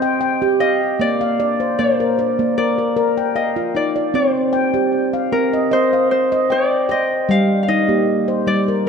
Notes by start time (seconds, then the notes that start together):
Already playing: C5 D#5
0.02 G5
0.21 G5
0.42 G4
0.60 D#5 F5
0.99 A#3 D5
1.21 F5
1.40 D5
1.60 C5
1.79 A#3 C5
2.00 A#4
2.19 D5
2.39 A#3
2.58 A#4 D5
2.78 A#4
2.97 A#4
3.17 G5
3.35 D#5 F5
3.56 F4
3.75 D#4 D5
3.96 D5
4.14 C4 C5
4.53 G5
4.74 G4 D5
5.13 F5
5.32 C4 A#4
5.53 D#5
5.71 C5 D#5
5.93 F5
6.11 C5
6.32 D#5
6.50 D5 G5
6.89 C5 D#5 G5
7.29 G3 F5
7.63 F5
7.68 D#4 D#5
7.88 A#3 G4
8.28 C5
8.47 G3 D5
8.68 A#4